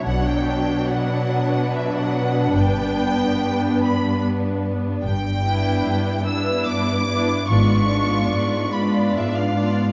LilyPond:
<<
  \new Staff \with { instrumentName = "Violin section" } { \time 3/4 \key g \lydian \tempo 4 = 73 fis''16 g''8. fis''4 e''16 fis''8. | g''4. b''8 r4 | \key e \dorian g''4. e'''8 d'''4 | cis'''4. b''8 e''16 eis''8. | }
  \new Staff \with { instrumentName = "Violin section" } { \time 3/4 \key g \lydian << { cis''4 b'2~ | b'2. | \key e \dorian r8 b'4 b'4 b'8 | d''8 d''4 d''4 d''8 | } \\ { d'2.~ | d'2. | r8 e'4 e'4 e'8 | eis'8 eis'4 eis'4 eis'8 | } >> }
  \new Staff \with { instrumentName = "Viola section" } { \time 3/4 \key g \lydian << { d'2.~ | d'2. | \key e \dorian r8 d'4 d'4 d'8 | d'8 d'4 d'4 d'8 | } \\ { fis2. | b2. | r8 b4 b4 b8 | b8 b4 b4 b8 | } >> }
  \new Staff \with { instrumentName = "Cello section" } { \clef bass \time 3/4 \key g \lydian b,2. | g,2. | \key e \dorian g,4 g,4 g,4 | gis,4 gis,4 gis,4 | }
  \new Staff \with { instrumentName = "Double bass section" } { \clef bass \time 3/4 \key g \lydian b,,4 r2 | g,,4 r2 | \key e \dorian g,,4 r2 | gis,,4 r2 | }
>>